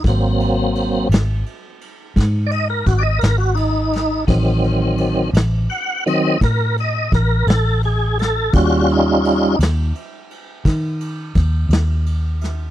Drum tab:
RD |xxxxxxxxxxxx|xxxxxxxxxxxx|xxxxxxxxxxxx|
SD |---o--o--o-o|---o-----o-o|---o--o--o-o|
BD |o-----o-o---|o-----o-o---|o-----o-o---|